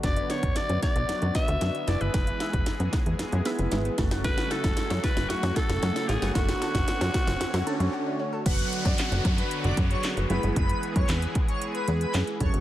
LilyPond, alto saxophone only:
\new Staff \with { instrumentName = "Alto saxophone" } { \time 4/4 \key e \mixolydian \tempo 4 = 114 d''8 cis''8 d''8 d''4 e''4 d''16 b'16~ | b'4.~ b'16 r2 r16 | b'8 a'4 b'8 fis'8 a'4 gis'8 | fis'2.~ fis'8 r8 |
r1 | r1 | }